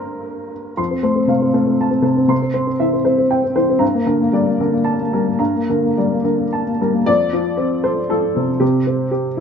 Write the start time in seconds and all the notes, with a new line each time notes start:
Already playing: G2 G3 A#3 A4 A#4 C5
0.77 F2 C6
0.91 C4
1.03 A3 C5
1.16 C4
1.28 C3 F5
1.42 C4
1.54 A3 C5
1.67 C4
1.81 A5
1.91 C4
2.02 C3 C5
2.17 C4
2.28 C3 C6
2.42 C4
2.54 C4 C5
2.67 C4
2.80 E3 E5
2.93 C4
3.05 C4 C5
3.18 C4
3.31 G5
3.44 C4
3.55 E3 C5
3.70 C4
3.79 G2 A#5
3.94 A#3
4.06 D3 A#4
4.21 A#3
4.33 G3 D5
4.47 A#3
4.60 D3 A#4
4.72 A#3
4.84 A5
5.00 A#3
5.13 G3 A#4
5.27 A#3
5.39 G2 A#5
5.55 A#3
5.69 D3 A#4
5.83 A#3
5.97 G3 D5
6.12 A#3
6.24 D3 A#4
6.39 A#3
6.53 A5
6.66 A#3
6.81 G3 A#4
6.93 A#3
7.06 F2 D5
7.33 F3
7.57 C4
7.84 A4 C5
8.10 F3 A4
8.37 C3
8.60 C3 G4
8.87 C4
9.11 G4